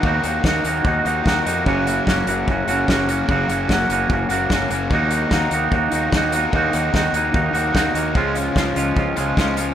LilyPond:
<<
  \new Staff \with { instrumentName = "Overdriven electric guitar" } { \time 4/4 \key fis \major \tempo 4 = 148 <dis ais dis' fis'>8 <ais dis' fis'>8 <dis ais dis' fis'>4. <ais dis' fis'>8 <dis ais dis' fis'>8 <ais dis' fis'>8 | <fis, cis fis ais cis' fis'>8 <fis ais cis' fis'>8 <fis ais cis' fis'>4. <fis ais cis' fis'>8 <fis, cis fis ais cis' fis'>8 <fis ais cis' fis'>8 | <fis, cis fis ais cis' fis'>8 <fis ais cis' fis'>8 <fis ais cis' fis'>4. <fis ais cis' fis'>8 <fis, cis fis ais cis' fis'>8 <fis ais cis' fis'>8 | <dis ais dis' fis'>8 <ais dis' fis'>8 <dis ais dis' fis'>4. <ais dis' fis'>8 <dis ais dis' fis'>8 <ais dis' fis'>8 |
<dis ais dis' fis'>8 <ais dis' fis'>8 <dis ais dis' fis'>4. <ais dis' fis'>8 <dis ais dis' fis'>8 <ais dis' fis'>8 | <cis eis gis cis' eis'>8 <gis cis' eis'>8 <eis gis cis' eis'>4. <gis cis' eis'>8 <cis eis gis cis' eis'>8 <gis cis' eis'>8 | }
  \new Staff \with { instrumentName = "Clean electric guitar" } { \time 4/4 \key fis \major <dis ais dis' fis'>8 <ais dis' fis'>8 <dis ais dis' fis'>8 <dis ais dis' fis'>8 <dis ais dis' fis'>8 <dis ais dis' fis'>8 <dis ais dis' fis'>8 <ais dis' fis'>8 | <fis, cis fis ais cis' fis'>8 <fis ais cis' fis'>8 <fis ais cis' fis'>8 <fis, cis fis ais cis' fis'>8 <fis ais cis' fis'>8 <fis, cis fis ais cis' fis'>8 <fis ais cis' fis'>8 <fis ais cis' fis'>8 | <fis, cis fis ais cis' fis'>8 <fis ais cis' fis'>8 <fis ais cis' fis'>8 <fis, cis fis ais cis' fis'>8 <fis ais cis' fis'>8 <fis, cis fis ais cis' fis'>8 <fis ais cis' fis'>8 <fis ais cis' fis'>8 | <dis ais dis' fis'>8 <ais dis' fis'>8 <dis ais dis' fis'>8 <dis ais dis' fis'>8 <dis ais dis' fis'>8 <dis ais dis' fis'>8 <dis ais dis' fis'>8 <ais dis' fis'>8 |
<dis ais dis' fis'>8 <ais dis' fis'>8 <dis ais dis' fis'>8 <dis ais dis' fis'>8 <dis ais dis' fis'>8 <dis ais dis' fis'>8 <dis ais dis' fis'>8 <ais dis' fis'>8 | <cis eis gis cis' eis'>8 <gis cis' eis'>8 <eis gis cis' eis'>8 <cis eis gis cis' eis'>8 <eis gis cis' eis'>8 <cis eis gis cis' eis'>8 <eis gis cis' eis'>8 <gis cis' eis'>8 | }
  \new Staff \with { instrumentName = "Fingered electric bass" } { \clef bass \time 4/4 \key fis \major dis,8 dis,8 dis,8 dis,8 dis,8 dis,8 dis,8 eis,8 | fis,,4 fis,,8 fis,,8 fis,,8 fis,,8 fis,,4 | fis,,8 fis,,8 fis,,8 fis,,8 fis,,8 fis,,8 fis,,8 fis,,8 | dis,4 dis,8 dis,8 dis,8 dis,8 dis,4 |
dis,8 dis,8 dis,8 dis,8 dis,8 dis,8 dis,8 dis,8 | cis,4 cis,8 cis,8 cis,8 cis,8 cis,4 | }
  \new DrumStaff \with { instrumentName = "Drums" } \drummode { \time 4/4 bd8 hh8 <bd sn>8 hh8 bd8 hh8 <bd sn>8 hh8 | bd8 hh8 <bd sn>8 hh8 bd8 hh8 <bd sn>8 hh8 | bd8 hh8 <bd sn>8 hh8 bd8 hh8 <bd sn>8 hh8 | bd8 hh8 <bd sn>8 hh8 bd8 hh8 <bd sn>8 hh8 |
bd8 hh8 <bd sn>8 hh8 bd8 hh8 <bd sn>8 hh8 | bd8 hh8 <bd sn>8 hh8 bd8 hh8 <bd sn>8 hh8 | }
>>